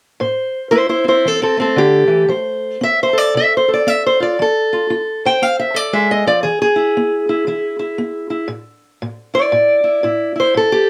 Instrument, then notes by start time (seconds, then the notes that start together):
steel-string acoustic guitar
0.20 A2 C5
0.71 A3 E4 C5
0.89 E4 C5
1.04 C4 E4
1.09 C5
1.25 E3 C4 A4
1.42 C4 A4
1.57 A3 C4
1.61 A4
1.76 D3 G4
2.08 E3
2.28 F3 C5
2.81 C4 E5
3.03 C5
3.13 A4
3.18 D5
3.35 C3 E5
3.57 C5
3.68 A4
3.74 D5
3.87 C4 E5
4.06 C5
4.20 F4 D5
4.39 F3 A4
4.73 F4
4.90 F4
5.25 C5 G5
5.42 C4 F5
5.59 E5
5.74 A4 D5
5.93 G#3 E5
6.11 D#5
6.26 F3 D5
6.43 E3 G#4
6.62 G#4
6.76 E4
6.97 B3
7.29 E4
7.47 E3 E4
7.79 E4
7.98 B3
8.30 E4
8.48 A2
9.02 A2
9.34 E4 D5
9.52 A2
9.84 E4
10.03 A2 E4
10.36 E4
10.40 C5
10.54 A2 A4
10.72 G4